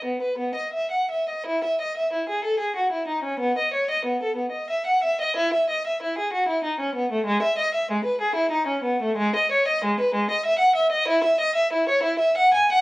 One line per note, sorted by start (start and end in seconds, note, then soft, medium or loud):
0.05 0.21 B3 soft
0.22 0.38 B4 soft
0.38 0.55 B3 soft
0.55 0.73 D#5 soft
0.73 0.91 E5 soft
0.91 1.10 F#5 soft
1.11 1.28 E5 soft
1.29 1.46 D#5 soft
1.46 1.63 E4 medium
1.64 1.80 E5 soft
1.81 1.96 D#5 soft
1.97 2.12 E5 soft
2.13 2.28 E4 soft
2.29 2.44 G#4 soft
2.44 2.60 A4 soft
2.59 2.75 G#4 soft
2.76 2.92 F#4 soft
2.92 3.08 E4 soft
3.07 3.24 D#4 soft
3.23 3.40 C#4 soft
3.39 3.56 B3 medium
3.58 3.73 D#5 soft
3.73 3.89 C#5 soft
3.90 4.06 D#5 soft
4.05 4.21 B3 soft
4.23 4.38 A4 soft
4.36 4.53 B3 soft
4.51 4.69 D#5 soft
4.70 4.86 E5 soft
4.86 5.03 F#5 soft
5.03 5.20 E5 soft
5.21 5.37 D#5 soft
5.37 5.53 E4 medium
5.54 5.70 E5 soft
5.70 5.86 D#5 medium
5.87 6.02 E5 soft
6.03 6.18 E4 soft
6.18 6.34 G#4 soft
6.33 6.49 F#4 medium
6.48 6.64 E4 soft
6.64 6.80 D#4 soft
6.80 6.95 C#4 soft
6.95 7.10 B3 soft
7.11 7.26 A3 soft
7.26 7.41 G#3 medium
7.42 7.57 E5 medium
7.58 7.73 D#5 medium
7.74 7.89 E5 medium
7.91 8.05 G#3 soft
8.04 8.20 B4 soft
8.21 8.36 G#4 medium
8.35 8.51 E4 medium
8.51 8.68 D#4 soft
8.67 8.84 C#4 soft
8.83 9.01 B3 medium
9.02 9.19 A3 medium
9.17 9.35 G#3 medium
9.36 9.52 D#5 medium
9.52 9.68 C#5 medium
9.68 9.83 D#5 medium
9.85 10.00 G#3 soft
10.00 10.15 B4 medium
10.15 10.30 G#3 medium
10.31 10.46 D#5 medium
10.45 10.61 E5 medium
10.59 10.76 F#5 medium
10.75 10.92 E5 medium
10.92 11.08 D#5 medium
11.08 11.24 E4 medium
11.24 11.40 E5 medium
11.40 11.56 D#5 medium
11.55 11.72 E5 medium
11.73 11.89 E4 medium
11.89 12.05 C#5 medium
12.03 12.20 E4 medium
12.19 12.36 E5 medium
12.37 12.54 F#5 medium
12.54 12.71 G#5 medium
12.72 12.81 F#5 medium